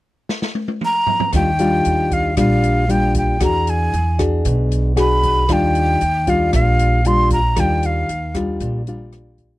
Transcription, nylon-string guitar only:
1.34 D#3 G3 D4 F4
1.59 G3 D4 F4
2.37 A#2 G3 D4 F4
2.89 G3 D4 F4
3.40 E3 D4 F#4 G#4
4.19 D4 F#4 G#4
4.45 B2
4.96 D4 F#4 G#4
5.49 D#3 G3 D4 F4
6.27 G3 D4 F4
6.54 A#2
7.06 G3 D4 F4
7.57 D#3 G3 D4 F4
8.35 G3 D4 F4
8.61 A#2
8.88 G3 D4 F4

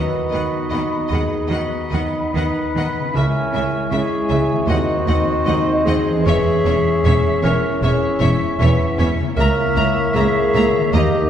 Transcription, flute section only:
Already playing: B5
1.51 B5
2.38 B5
3.17 G#5
3.93 G#5
4.70 D#5
6.28 E5
7.82 E5
9.37 E5
10.96 D#5

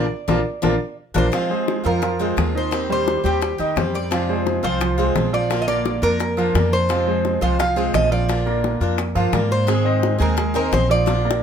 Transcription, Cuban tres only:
Already playing: D5
1.18 C5
1.86 A#4
2.57 C5
2.92 C5
3.26 G4
3.95 D5
4.64 C5
5.34 D5
5.62 D#5
5.68 D5
6.03 A#4
6.73 C5
7.42 C5
7.60 F5
7.95 D#5
8.12 D5
9.52 C5
10.22 A#4
10.56 A#4
10.74 C5
10.91 D5

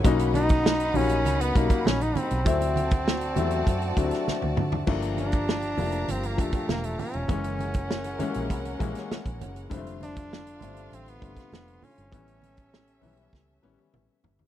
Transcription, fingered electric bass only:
0.05 B1
0.96 A#1
1.26 C#2
1.56 B1
1.86 A#1
2.31 B1
2.46 D2
3.37 E2
3.67 F#2
3.97 D2
4.28 muted fingered electric bass stroke
4.43 D2
4.58 D3
4.88 G1
5.79 F1
6.09 G1
6.39 F1
6.70 E1
7.15 E1
7.29 F#1
8.21 muted fingered electric bass stroke
8.36 A#1
8.51 C2
8.81 A#1
9.26 A#1
9.42 F#1
9.72 F1
10.62 G1
10.92 A1
11.23 G1
11.52 F1
11.98 G1
12.13 A1
13.04 B1
13.34 C#2
13.64 A1
13.94 A1
14.24 G1

